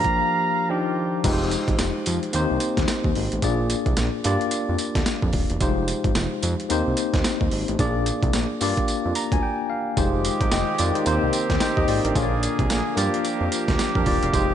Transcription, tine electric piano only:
Already playing: F3 A#3 D4 G4
0.70 F3 D4 D#4 G4
1.24 G#3 D#4 F4 G4 B4
1.33 C5
2.33 A#3 C4 D#4 G4 C5
3.43 A#3 D4 F4 G#4 D5
4.24 A#3 D4 F4 G4 D5
5.60 G3 D#4 F4 G4 C5
5.67 G#3
6.69 A#3 C4 D#4 G4 C5
7.79 A#3 D4 F4 G#4 D5
8.61 A#3 D4 F4 G4 D5
9.16 A#5
9.32 G#5
9.43 G5
9.70 F5
9.96 G#3 D#4 F4 G4 C5
10.41 A#4 G5
10.52 G4 D#5
10.79 F4 D5
10.95 D#4 C5
11.05 A#3 C4 D#4 F4 C5
11.13 G4
11.61 D#4 C5
11.77 G4 D#5
11.88 F4 D5
12.05 D4 A#4
12.15 A#3 D4 F4 G#4 C#5
12.23 D5
12.96 A#3 D4 F4 G4 D5
13.96 D4 A#4
14.07 F4 D5
14.23 F5
14.32 G#3 D#4 F4 G4 C5

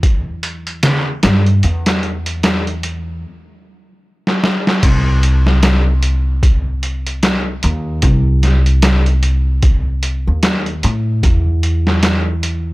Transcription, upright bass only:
Already playing: E2
1.24 G2
1.64 E2
4.83 C2
7.64 D#2
8.03 C2
10.27 D#2
10.84 A2
11.24 E2

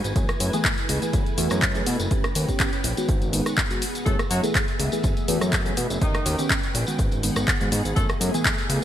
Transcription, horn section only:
4.06 A3 A4
4.31 F#3 F#4
6.01 D#3 D#4
7.96 A3 A4

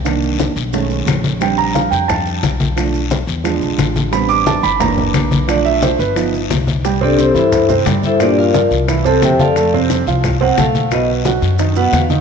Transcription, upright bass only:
Already playing: C2
0.56 B1
1.06 A#1
1.91 F2
2.43 B1
3.27 E2
3.61 B1
3.78 A1
4.63 F#1
5.14 B1
5.99 G1
6.50 C2
7.35 G2
7.86 G2
8.71 C2
9.22 F2
10.06 C2
10.57 B1
11.42 F#2
11.92 E2

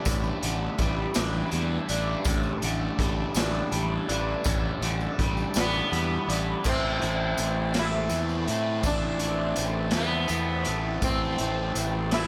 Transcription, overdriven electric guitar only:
Already playing: G3 D4
0.07 A2
0.44 D3
0.81 G3
1.17 D4
1.52 G3
1.90 D4
2.27 A2
2.64 D3
3.00 G3
3.35 D4
3.72 G3
4.08 D4
4.45 A2
4.82 D3
5.21 G3
5.56 D4
5.92 G3
6.29 D4
6.64 A2 E3 A3 C4
6.68 E4
7.00 A3 C4 E4
7.74 A2 E3 A3 C4 E4
8.10 E3 A3 C4 E4
8.46 A3 C4 E4
8.83 A2 E3 A3 C4 E4
9.20 A3 C4 E4
9.92 A2 E3 A3 C4 E4
10.28 E3 A3 C4 E4
10.64 A3 C4 E4
11.01 A2 E3 A3 C4 E4
11.39 A3 C4 E4
12.12 A2 E3 A3 C4 E4

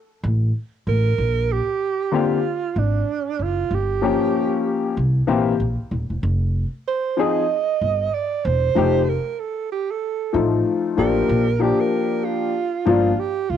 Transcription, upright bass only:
0.23 A1
0.87 A1
1.18 A#1
2.76 G#1
3.39 F#1
3.71 G1
4.97 C2
5.28 A#1
5.60 A#1
5.91 D#1
6.10 E1
6.23 F1
7.81 G1
8.45 E1
8.76 F1
10.34 A1
10.98 A1
11.29 A#1
12.86 G1
13.50 C#2

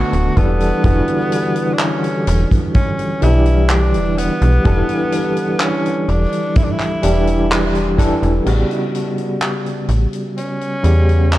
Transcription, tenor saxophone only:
Already playing: F#4
0.37 B3
1.73 D4
1.81 C#4
2.75 C#4
3.23 E4
3.71 D4
4.18 B3
5.62 C#4
6.09 D4
6.57 E4
6.64 D4
6.71 E4
10.37 C#4

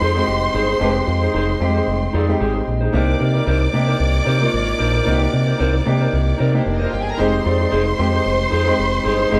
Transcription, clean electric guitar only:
0.00 D#4 G#4 C5
0.15 D#4 G#4 C5
0.27 muted clean electric guitar stroke
0.42 muted clean electric guitar stroke
0.54 D#4 G#4 C5
0.69 D#4 G#4 C5
0.80 D#4 G#4 C5
0.95 muted clean electric guitar stroke
1.07 muted clean electric guitar stroke
1.22 D#4 G#4 C5
1.34 D#4 G#4 C5
1.49 muted clean electric guitar stroke
1.60 muted clean electric guitar stroke
1.75 D#4 G#4 C5
2.01 muted clean electric guitar stroke
2.13 D#4 G#4 D5
2.28 muted clean electric guitar stroke
2.39 D#4 G#4 C5
2.55 muted clean electric guitar stroke
2.66 muted clean electric guitar stroke
2.81 D#4 G#4 C5
2.93 D#4 A#4 C5
3.19 D#4 A#4 D5
3.34 D#4 A#4 D5
3.46 D#4 A#4 C5
3.61 muted clean electric guitar stroke
3.73 muted clean electric guitar stroke
3.87 D#4 A#4 C5
3.99 muted clean electric guitar stroke
4.14 muted clean electric guitar stroke
4.25 D#4 A#4 C5
4.40 D#4 A#4 C5
4.51 muted clean electric guitar stroke
4.66 muted clean electric guitar stroke
4.78 D#4 A#4 C5
4.93 D#4 A#4 C5
5.05 D#4 A#4 C5
5.20 muted clean electric guitar stroke
5.32 muted clean electric guitar stroke
5.47 D#4 A#4 C5
5.58 D#4 A#4 C5
5.74 muted clean electric guitar stroke
5.85 muted clean electric guitar stroke
6.00 D#4 A#4 C5
6.27 muted clean electric guitar stroke
6.38 D#4 A#4 D5
6.53 muted clean electric guitar stroke
6.65 muted clean electric guitar stroke
6.80 D#4 A#4 C5
6.91 muted clean electric guitar stroke
7.06 muted clean electric guitar stroke
7.18 D#4 G#4 C5
7.44 D#4 G#4 D5
7.59 D#4 G#4 D5
7.70 D#4 G#4 C5
7.86 muted clean electric guitar stroke
7.97 muted clean electric guitar stroke
8.12 D#4 G#4 C5
8.24 muted clean electric guitar stroke
8.39 muted clean electric guitar stroke
8.50 D#4 G#4 C5
8.65 D#4 G#4 C5
8.77 muted clean electric guitar stroke
8.92 muted clean electric guitar stroke
9.04 D#4 G#4 C5
9.18 D#4 G#4 C5
9.30 D#4 G#4 C5

